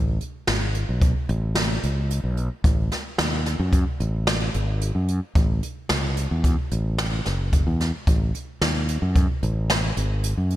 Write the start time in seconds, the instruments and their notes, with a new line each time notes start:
Already playing: fretless electric bass A1
0.21 closed hi-hat
0.47 fretless electric bass G#1, snare, closed hi-hat
0.74 closed hi-hat
0.89 fretless electric bass B1
1.01 kick, closed hi-hat
1.29 fretless electric bass A1, closed hi-hat
1.55 snare, closed hi-hat
1.83 fretless electric bass C#2, closed hi-hat
2.10 closed hi-hat
2.24 fretless electric bass B1
2.37 closed hi-hat
2.64 fretless electric bass A1, kick, closed hi-hat
2.92 snare, closed hi-hat
3.18 fretless electric bass D#2, snare, closed hi-hat
3.46 snare, closed hi-hat
3.60 fretless electric bass F#2
3.73 kick, closed hi-hat
4.00 fretless electric bass A1, closed hi-hat
4.27 snare, closed hi-hat
4.54 fretless electric bass G#1, closed hi-hat
4.81 closed hi-hat
4.95 fretless electric bass F#2
5.08 closed hi-hat
5.35 fretless electric bass A1, kick, closed hi-hat
5.63 closed hi-hat
5.89 fretless electric bass C#2, snare, closed hi-hat
6.17 closed hi-hat
6.31 fretless electric bass E2
6.44 kick, closed hi-hat
6.71 fretless electric bass A1, closed hi-hat
6.98 snare, closed hi-hat
7.25 fretless electric bass F#1, snare, closed hi-hat
7.53 kick, closed hi-hat
7.67 fretless electric bass E2
7.80 snare, closed hi-hat
8.07 fretless electric bass A1, kick, closed hi-hat
8.34 closed hi-hat
8.61 fretless electric bass D#2, snare, closed hi-hat
8.88 closed hi-hat
9.02 fretless electric bass F#2
9.15 kick, closed hi-hat
9.43 fretless electric bass A1, closed hi-hat
9.70 snare, closed hi-hat
9.97 fretless electric bass G#1, closed hi-hat
10.24 closed hi-hat
10.37 fretless electric bass F#2
10.50 closed hi-hat